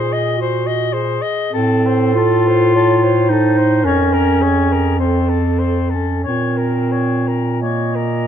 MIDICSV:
0, 0, Header, 1, 5, 480
1, 0, Start_track
1, 0, Key_signature, -5, "minor"
1, 0, Tempo, 1132075
1, 649, Time_signature, 4, 2, 24, 8
1, 649, Tempo, 1197605
1, 1129, Tempo, 1134216
1, 2089, Tempo, 1265823
1, 2569, Tempo, 1351351
1, 3283, End_track
2, 0, Start_track
2, 0, Title_t, "Soprano saxophone"
2, 0, Program_c, 0, 64
2, 0, Note_on_c, 0, 72, 53
2, 54, Note_on_c, 0, 75, 50
2, 60, Note_off_c, 0, 72, 0
2, 164, Note_off_c, 0, 75, 0
2, 174, Note_on_c, 0, 72, 55
2, 283, Note_on_c, 0, 75, 53
2, 290, Note_off_c, 0, 72, 0
2, 395, Note_on_c, 0, 72, 60
2, 401, Note_off_c, 0, 75, 0
2, 518, Note_on_c, 0, 75, 52
2, 524, Note_off_c, 0, 72, 0
2, 647, Note_off_c, 0, 75, 0
2, 650, Note_on_c, 0, 69, 58
2, 782, Note_on_c, 0, 72, 51
2, 788, Note_off_c, 0, 69, 0
2, 910, Note_on_c, 0, 69, 50
2, 916, Note_off_c, 0, 72, 0
2, 1029, Note_on_c, 0, 72, 51
2, 1035, Note_off_c, 0, 69, 0
2, 1136, Note_off_c, 0, 72, 0
2, 1141, Note_on_c, 0, 69, 52
2, 1258, Note_on_c, 0, 72, 51
2, 1264, Note_off_c, 0, 69, 0
2, 1378, Note_on_c, 0, 69, 47
2, 1384, Note_off_c, 0, 72, 0
2, 1489, Note_on_c, 0, 72, 48
2, 1495, Note_off_c, 0, 69, 0
2, 1604, Note_off_c, 0, 72, 0
2, 1609, Note_on_c, 0, 73, 54
2, 1724, Note_on_c, 0, 70, 47
2, 1730, Note_off_c, 0, 73, 0
2, 1846, Note_on_c, 0, 73, 44
2, 1852, Note_off_c, 0, 70, 0
2, 1972, Note_on_c, 0, 70, 45
2, 1979, Note_off_c, 0, 73, 0
2, 2086, Note_off_c, 0, 70, 0
2, 2089, Note_on_c, 0, 72, 46
2, 2201, Note_on_c, 0, 69, 44
2, 2206, Note_off_c, 0, 72, 0
2, 2314, Note_on_c, 0, 72, 44
2, 2320, Note_off_c, 0, 69, 0
2, 2433, Note_on_c, 0, 69, 40
2, 2438, Note_off_c, 0, 72, 0
2, 2558, Note_off_c, 0, 69, 0
2, 2561, Note_on_c, 0, 73, 43
2, 2679, Note_on_c, 0, 70, 39
2, 2685, Note_off_c, 0, 73, 0
2, 2802, Note_on_c, 0, 73, 38
2, 2807, Note_off_c, 0, 70, 0
2, 2930, Note_on_c, 0, 70, 35
2, 2935, Note_off_c, 0, 73, 0
2, 3049, Note_off_c, 0, 70, 0
2, 3051, Note_on_c, 0, 73, 38
2, 3170, Note_on_c, 0, 70, 36
2, 3175, Note_off_c, 0, 73, 0
2, 3283, Note_off_c, 0, 70, 0
2, 3283, End_track
3, 0, Start_track
3, 0, Title_t, "Clarinet"
3, 0, Program_c, 1, 71
3, 0, Note_on_c, 1, 68, 68
3, 160, Note_on_c, 1, 66, 58
3, 167, Note_off_c, 1, 68, 0
3, 399, Note_on_c, 1, 68, 58
3, 405, Note_off_c, 1, 66, 0
3, 651, Note_off_c, 1, 68, 0
3, 658, Note_on_c, 1, 69, 76
3, 1124, Note_off_c, 1, 69, 0
3, 1140, Note_on_c, 1, 73, 74
3, 1366, Note_on_c, 1, 72, 62
3, 1372, Note_off_c, 1, 73, 0
3, 1598, Note_on_c, 1, 70, 63
3, 1604, Note_off_c, 1, 72, 0
3, 1841, Note_on_c, 1, 68, 58
3, 1848, Note_off_c, 1, 70, 0
3, 2085, Note_on_c, 1, 69, 57
3, 2091, Note_off_c, 1, 68, 0
3, 2445, Note_off_c, 1, 69, 0
3, 2567, Note_on_c, 1, 70, 47
3, 2986, Note_off_c, 1, 70, 0
3, 3047, Note_on_c, 1, 75, 59
3, 3283, Note_off_c, 1, 75, 0
3, 3283, End_track
4, 0, Start_track
4, 0, Title_t, "Clarinet"
4, 0, Program_c, 2, 71
4, 648, Note_on_c, 2, 60, 81
4, 894, Note_on_c, 2, 65, 99
4, 900, Note_off_c, 2, 60, 0
4, 1367, Note_on_c, 2, 63, 87
4, 1373, Note_off_c, 2, 65, 0
4, 1603, Note_on_c, 2, 61, 89
4, 1609, Note_off_c, 2, 63, 0
4, 2089, Note_on_c, 2, 60, 68
4, 2095, Note_off_c, 2, 61, 0
4, 2447, Note_on_c, 2, 61, 59
4, 2453, Note_off_c, 2, 60, 0
4, 2571, Note_off_c, 2, 61, 0
4, 2576, Note_on_c, 2, 60, 70
4, 3053, Note_on_c, 2, 58, 51
4, 3058, Note_off_c, 2, 60, 0
4, 3283, Note_off_c, 2, 58, 0
4, 3283, End_track
5, 0, Start_track
5, 0, Title_t, "Bass clarinet"
5, 0, Program_c, 3, 71
5, 0, Note_on_c, 3, 46, 57
5, 504, Note_off_c, 3, 46, 0
5, 651, Note_on_c, 3, 45, 69
5, 1602, Note_on_c, 3, 41, 63
5, 1608, Note_off_c, 3, 45, 0
5, 2569, Note_off_c, 3, 41, 0
5, 2571, Note_on_c, 3, 46, 49
5, 3283, Note_off_c, 3, 46, 0
5, 3283, End_track
0, 0, End_of_file